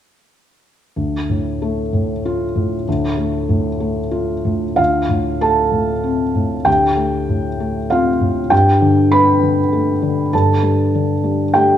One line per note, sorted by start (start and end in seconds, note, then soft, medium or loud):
0.96 2.82 D2 soft
1.29 1.80 A2 soft
1.62 2.12 A3 soft
1.93 2.43 A2 soft
2.25 2.75 F4 soft
2.56 3.05 A2 soft
2.88 4.75 D2 soft
3.18 3.68 A3 soft
3.49 3.99 A2 soft
3.80 4.32 A3 soft
4.11 4.65 F4 soft
4.45 4.78 A2 soft
4.76 6.63 D2 soft
4.76 5.38 F4 soft
4.76 5.41 F5 medium
5.09 5.60 A2 soft
5.41 5.92 A3 soft
5.41 6.63 A4 soft
5.41 6.66 A5 medium
5.72 6.23 A2 soft
6.03 6.54 C4 soft
6.35 6.85 A2 soft
6.65 8.47 D2 soft
6.65 7.85 G4 medium
6.65 7.89 G5 medium
6.97 7.46 A3 soft
7.29 7.78 A2 soft
7.60 8.09 A3 soft
7.90 8.40 C4 soft
7.90 8.49 F4 medium
7.90 8.52 F5 medium
8.21 8.52 A2 soft
8.50 10.28 G2 soft
8.50 9.08 G4 soft
8.50 9.12 G5 medium
8.81 9.30 D3 soft
9.12 9.60 G3 soft
9.12 10.29 B4 medium
9.12 10.32 B5 medium
9.42 9.90 D3 soft
9.73 10.20 A3 soft
10.02 10.51 D3 soft
10.33 11.78 G2 soft
10.33 11.52 A4 soft
10.33 11.55 A5 medium
10.63 11.12 G3 soft
10.95 11.43 D3 soft
11.24 11.73 G3 soft
11.54 11.78 A3 soft
11.54 11.78 G4 medium
11.54 11.78 G5 medium